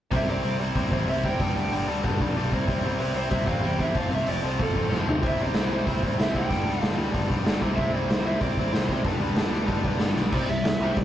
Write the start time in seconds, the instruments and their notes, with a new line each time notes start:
0.11 picked electric bass C2, overdriven electric guitar C3 G3 C4 E4, kick, open hi-hat
0.16 lead electric guitar E5
0.27 picked electric bass C2, overdriven electric guitar C3 G3 C4 E4, lead electric guitar D5, open hi-hat
0.42 picked electric bass C2, overdriven electric guitar C3 G3 C4 E4, open hi-hat
0.60 overdriven electric guitar C3 G3 C4 E4, lead electric guitar C5, open hi-hat
0.75 picked electric bass C2, overdriven electric guitar C3 G3 C4 E4, kick, open hi-hat
0.92 picked electric bass A1, overdriven electric guitar C3 G3 C4 E4, kick, open hi-hat
1.07 picked electric bass C2, overdriven electric guitar C3 G3 C4 E4, lead electric guitar E5, open hi-hat
1.24 overdriven electric guitar C3 G3 C4 E4, lead electric guitar G5, kick, open hi-hat
1.40 picked electric bass G1, overdriven electric guitar G2 D3 G3 B3 D4, kick, open hi-hat
1.56 picked electric bass D2, overdriven electric guitar D3 G3 B3 D4, open hi-hat
1.60 overdriven electric guitar G2
1.72 picked electric bass G1, overdriven electric guitar G2 D3 G3 B3, open hi-hat
1.76 overdriven electric guitar D4
1.88 picked electric bass D2, overdriven electric guitar G2 D3 G3 B3 D4, open hi-hat
2.04 picked electric bass G1, overdriven electric guitar G2 D3 G3 B3 D4, kick, open hi-hat
2.20 picked electric bass B1, overdriven electric guitar G2 D3 G3 B3 D4, kick, open hi-hat
2.35 picked electric bass B1, overdriven electric guitar G2 D3 G3 B3 D4, open hi-hat
2.52 picked electric bass C2, overdriven electric guitar C3 G3 C4 E4, kick, open hi-hat
2.68 picked electric bass C2, overdriven electric guitar C3 G3 C4 E4, kick, open hi-hat
2.83 picked electric bass C2, overdriven electric guitar C3 G3 C4 E4, open hi-hat
2.99 picked electric bass C2, overdriven electric guitar C3 G3 C4 E4, lead electric guitar B4, open hi-hat
3.15 overdriven electric guitar C3 G3 C4 E4, lead electric guitar C5, open hi-hat
3.31 picked electric bass C2, overdriven electric guitar C3 G3 C4 E4, lead electric guitar E5, kick, open hi-hat
3.46 picked electric bass A1, overdriven electric guitar C3 G3 C4 E4, lead electric guitar F5, kick, open hi-hat
3.63 picked electric bass E2, overdriven electric guitar C3 G3 C4 E4, lead electric guitar G5, open hi-hat
3.78 overdriven electric guitar C3 G3 C4 E4, lead electric guitar E5, kick, open hi-hat
3.94 picked electric bass F1, overdriven electric guitar F2 C3 F3 A3 C4 F4, kick, open hi-hat
3.98 lead electric guitar F5
4.11 picked electric bass C2, overdriven electric guitar F2 C3 F3 A3 C4 F4, lead electric guitar E5, open hi-hat
4.26 picked electric bass F1, overdriven electric guitar F2 C3 F3 A3 C4 F4, lead electric guitar D5, open hi-hat
4.43 picked electric bass C2, overdriven electric guitar F2 C3 F3 A3 C4 F4, lead electric guitar C5, open hi-hat
4.58 picked electric bass F1, overdriven electric guitar F2 C3 F3 A3 C4 F4, kick, open hi-hat
4.62 lead electric guitar A4
4.74 picked electric bass A1, overdriven electric guitar F2 C3 F3 A3 C4 F4, kick, open hi-hat
4.90 picked electric bass F1, overdriven electric guitar F2 C3 F3 A3 C4 F4, snare
5.07 picked electric bass F1, overdriven electric guitar F2 C3 F3 A3 C4 F4, floor tom
5.22 picked electric bass C2, overdriven electric guitar C3 G3 C4 E4, kick, open hi-hat
5.27 lead electric guitar E5
5.38 picked electric bass C2, overdriven electric guitar G3 C4 E4, open hi-hat
5.42 overdriven electric guitar C3, lead electric guitar D5
5.54 picked electric bass C2, overdriven electric guitar C3 G3 C4 E4, snare, open hi-hat
5.71 overdriven electric guitar C3 G3 C4 E4, lead electric guitar C5, open hi-hat
5.87 picked electric bass C2, overdriven electric guitar C3 G3 C4 E4, kick, open hi-hat
6.03 picked electric bass A1, overdriven electric guitar C3 G3 C4 E4, kick, open hi-hat
6.18 picked electric bass C2, overdriven electric guitar C3 G3 C4 E4, lead electric guitar E5, snare, open hi-hat
6.34 overdriven electric guitar C3 G3 C4 E4, lead electric guitar G5, kick, open hi-hat
6.48 picked electric bass G1, overdriven electric guitar G2 D3 G3 B3 D4, kick, open hi-hat
6.64 picked electric bass D2, overdriven electric guitar G2 D3 G3 B3 D4, open hi-hat
6.79 picked electric bass G1, overdriven electric guitar G2 D3 G3 B3 D4, lead electric guitar F5, snare, open hi-hat
6.94 picked electric bass D2, overdriven electric guitar G2 D3 G3 B3 D4
6.99 open hi-hat
7.10 overdriven electric guitar G2 D3 G3 B3 D4, kick
7.15 picked electric bass G1, open hi-hat
7.27 picked electric bass B1, overdriven electric guitar G2 D3 G3 B3 D4, kick, open hi-hat
7.43 picked electric bass G1, overdriven electric guitar G2 D3 G3 B3 D4, snare, open hi-hat
7.60 picked electric bass C2, overdriven electric guitar C3 G3 C4 E4, kick, open hi-hat
7.75 picked electric bass C2, overdriven electric guitar C3 G3 C4 E4, lead electric guitar E5, kick, open hi-hat
7.91 picked electric bass C2, overdriven electric guitar C3 G3 C4 E4, lead electric guitar D5, open hi-hat
8.09 picked electric bass C2, overdriven electric guitar C3 G3 C4 E4, lead electric guitar C5, snare, open hi-hat
8.24 overdriven electric guitar C3 G3 C4 E4, lead electric guitar E5, open hi-hat
8.40 picked electric bass C2, overdriven electric guitar C3 G3 C4 E4, lead electric guitar D5, kick, open hi-hat
8.57 picked electric bass A1, overdriven electric guitar C3 G3 C4 E4, kick, open hi-hat
8.72 picked electric bass C2, overdriven electric guitar C3 G3 C4 E4, snare, open hi-hat
8.87 overdriven electric guitar C3 G3 C4 E4, lead electric guitar C5, kick, open hi-hat
9.02 picked electric bass G1, overdriven electric guitar G2 D3 G3 B3 D4, kick, open hi-hat
9.07 lead electric guitar B4
9.19 picked electric bass D2, overdriven electric guitar G2 D3 G3 B3 D4, open hi-hat
9.35 picked electric bass G1, overdriven electric guitar G2 D3 G3 B3 D4, snare, open hi-hat
9.50 picked electric bass D2, overdriven electric guitar G2 D3 G3 B3 D4, open hi-hat
9.66 picked electric bass G1, overdriven electric guitar G2 D3 G3 B3 D4, kick, open hi-hat
9.82 picked electric bass B1, overdriven electric guitar G2 D3 G3 B3 D4, kick, open hi-hat
9.97 picked electric bass G1, overdriven electric guitar G2 D3 G3 B3 D4, snare, open hi-hat
10.15 picked electric bass B1, overdriven electric guitar G2 D3 G3 B3 D4, snare
10.30 picked electric bass C2, overdriven electric guitar C3 G3 C4, kick, crash
10.48 picked electric bass C2, overdriven electric guitar C3 G3, lead electric guitar E5, open hi-hat
10.63 picked electric bass C2, overdriven electric guitar C3 G3, snare, open hi-hat
10.80 picked electric bass C2, overdriven electric guitar C3 G3 C4, open hi-hat
10.96 picked electric bass A2, overdriven electric guitar C3 G3, lead electric guitar D5, kick, open hi-hat